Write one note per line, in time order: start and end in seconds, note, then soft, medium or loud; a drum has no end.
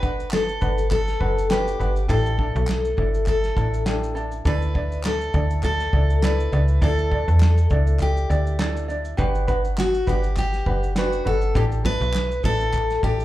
0.00 0.58 G1 loud
0.00 0.63 D4 soft
0.00 0.61 F#4 soft
0.00 0.29 B4 medium
0.00 0.60 B4 soft
0.00 kick loud
0.00 shaker medium
0.20 shaker soft
0.31 0.88 A4 medium
0.31 snare medium
0.31 clap medium
0.31 shaker medium
0.49 shaker soft
0.61 1.17 G1 medium
0.61 1.21 D4 soft
0.61 1.20 F#4 soft
0.61 1.19 B4 soft
0.61 kick medium
0.61 shaker medium
0.78 shaker medium
0.91 1.47 A4 medium
0.91 kick medium
0.91 clap medium
0.91 shaker medium
1.08 snare soft
1.08 shaker soft
1.20 1.76 F#1 medium
1.20 1.49 D4 soft
1.20 1.50 F#4 soft
1.20 1.50 B4 soft
1.20 kick medium
1.38 shaker medium
1.49 1.80 D4 medium
1.49 1.79 F#4 medium
1.49 1.79 G4 medium
1.49 2.06 G4 medium
1.49 1.78 B4 medium
1.49 snare loud
1.49 clap medium
1.49 shaker medium
1.68 shaker medium
1.79 2.07 G1 medium
1.79 2.08 D4 soft
1.79 2.09 F#4 soft
1.79 2.09 B4 soft
1.79 shaker soft
1.96 shaker soft
2.08 2.52 A1 loud
2.08 2.39 D4 medium
2.08 2.38 E4 medium
2.08 2.38 G4 medium
2.08 2.37 A4 medium
2.08 3.27 A4 medium
2.08 kick loud
2.08 shaker medium
2.26 shaker soft
2.38 2.99 D4 soft
2.38 2.98 E4 soft
2.38 2.97 A4 soft
2.38 kick medium
2.56 2.95 B1 loud
2.56 shaker soft
2.67 snare medium
2.67 clap medium
2.67 shaker medium
2.85 shaker medium
2.97 3.53 G1 medium
2.97 3.58 D4 soft
2.97 3.57 E4 medium
2.97 3.57 A4 medium
2.97 kick medium
3.14 shaker medium
3.26 3.83 A4 medium
3.26 kick medium
3.26 clap medium
3.26 shaker medium
3.44 snare soft
3.44 shaker soft
3.57 4.41 A1 medium
3.57 3.85 D4 soft
3.57 3.86 E4 soft
3.57 3.86 A4 medium
3.57 kick medium
3.57 shaker soft
3.74 shaker medium
3.86 4.16 D4 medium
3.86 4.15 E4 medium
3.86 4.16 G4 soft
3.86 4.14 A4 medium
3.86 snare loud
3.86 clap medium
3.86 shaker medium
4.04 shaker medium
4.15 4.44 D4 soft
4.15 4.45 E4 soft
4.15 4.44 A4 medium
4.15 shaker soft
4.32 shaker soft
4.45 5.30 D2 medium
4.45 4.75 D4 medium
4.45 4.74 E4 medium
4.45 4.75 A4 medium
4.45 5.04 B4 medium
4.45 4.73 D5 medium
4.45 kick loud
4.45 shaker medium
4.62 shaker soft
4.74 5.36 D4 soft
4.74 5.34 E4 soft
4.74 5.34 D5 soft
4.74 kick medium
4.92 shaker soft
5.04 5.63 A4 medium
5.04 snare loud
5.04 clap medium
5.04 shaker medium
5.21 shaker soft
5.34 5.89 D2 loud
5.34 5.95 D4 soft
5.34 5.93 E4 soft
5.34 5.93 D5 medium
5.34 kick medium
5.34 shaker soft
5.50 shaker medium
5.63 6.24 A4 medium
5.63 kick medium
5.63 clap medium
5.63 shaker medium
5.80 snare soft
5.80 shaker soft
5.93 6.48 C#2 medium
5.93 6.22 D4 soft
5.93 6.22 E4 soft
5.93 6.23 D5 soft
5.93 kick medium
6.10 shaker soft
6.22 6.52 D4 medium
6.22 6.52 E4 medium
6.22 6.52 A4 medium
6.22 6.83 B4 medium
6.22 6.51 D5 medium
6.22 snare loud
6.22 clap medium
6.22 shaker medium
6.40 shaker medium
6.52 6.80 C#2 loud
6.52 6.81 D4 soft
6.52 6.81 E4 soft
6.52 6.81 D5 medium
6.52 shaker medium
6.68 shaker soft
6.81 7.24 D2 loud
6.81 7.11 D4 medium
6.81 7.11 E4 medium
6.81 7.11 A4 medium
6.81 8.02 A4 medium
6.81 7.10 D5 medium
6.81 kick loud
6.81 shaker medium
6.99 shaker soft
7.11 7.72 D4 soft
7.11 7.71 E4 soft
7.11 7.70 D5 soft
7.11 kick loud
7.28 7.67 E2 medium
7.28 shaker soft
7.40 snare loud
7.40 clap medium
7.40 shaker medium
7.58 shaker medium
7.70 8.26 C#2 medium
7.70 8.31 D4 soft
7.70 8.29 E4 soft
7.70 8.29 D5 medium
7.70 kick medium
7.70 shaker soft
7.87 shaker medium
8.00 8.56 G4 medium
8.00 kick medium
8.00 clap medium
8.00 shaker medium
8.17 shaker soft
8.30 9.15 D2 medium
8.30 8.59 D4 soft
8.30 8.59 E4 soft
8.30 8.59 D5 medium
8.30 shaker medium
8.47 shaker medium
8.59 8.89 D4 medium
8.59 8.88 E4 medium
8.59 8.89 A4 medium
8.59 8.87 D5 medium
8.59 snare loud
8.59 clap medium
8.59 shaker medium
8.77 shaker medium
8.88 9.17 D4 soft
8.88 9.18 E4 medium
8.88 9.18 D5 medium
8.88 shaker soft
9.05 shaker soft
9.17 10.03 G1 loud
9.17 9.48 D4 medium
9.17 9.47 F#4 medium
9.17 9.47 G4 medium
9.17 9.46 B4 medium
9.17 kick loud
9.17 shaker medium
9.35 shaker soft
9.47 10.09 D4 soft
9.47 10.07 F#4 soft
9.47 10.06 B4 medium
9.47 kick medium
9.47 shaker medium
9.65 shaker soft
9.78 10.09 F#4 medium
9.78 snare loud
9.78 clap medium
9.78 shaker medium
9.94 shaker medium
10.07 10.63 G1 medium
10.07 10.68 D4 soft
10.07 10.66 F#4 soft
10.07 10.37 G4 medium
10.07 10.65 B4 soft
10.07 kick medium
10.07 shaker medium
10.24 shaker medium
10.37 10.93 G4 medium
10.37 kick medium
10.37 clap medium
10.37 shaker medium
10.53 snare soft
10.53 shaker soft
10.66 11.22 F#1 medium
10.66 10.95 D4 soft
10.66 10.96 F#4 soft
10.66 10.96 B4 medium
10.66 kick medium
10.83 shaker medium
10.96 11.25 D4 medium
10.96 11.24 F#4 medium
10.96 11.25 G4 medium
10.96 11.23 B4 medium
10.96 snare loud
10.96 clap medium
10.96 shaker medium
11.13 shaker medium
11.25 11.53 G1 medium
11.25 11.54 D4 soft
11.25 11.55 F#4 soft
11.25 11.56 A4 medium
11.25 11.55 B4 soft
11.41 shaker soft
11.54 11.98 A1 loud
11.54 11.85 D4 medium
11.54 11.84 E4 medium
11.54 11.84 G4 medium
11.54 11.64 G4 medium
11.54 11.83 A4 medium
11.54 kick loud
11.54 shaker medium
11.72 shaker soft
11.84 12.45 D4 soft
11.84 12.44 E4 soft
11.84 12.43 A4 soft
11.84 12.45 B4 loud
11.84 kick loud
11.84 shaker medium
12.01 12.40 B1 medium
12.01 shaker soft
12.14 snare medium
12.14 clap medium
12.14 shaker medium
12.31 shaker soft
12.43 12.99 A1 medium
12.43 13.05 D4 soft
12.43 13.04 E4 soft
12.43 13.03 A4 soft
12.43 13.03 A4 medium
12.43 kick medium
12.43 shaker soft
12.61 shaker soft
12.73 kick medium
12.73 clap medium
12.73 shaker medium
12.90 snare soft
12.90 shaker soft
13.03 13.25 A1 medium
13.03 13.25 D4 soft
13.03 13.25 E4 soft
13.03 13.25 G4 medium
13.03 13.25 A4 soft
13.03 kick medium
13.20 shaker medium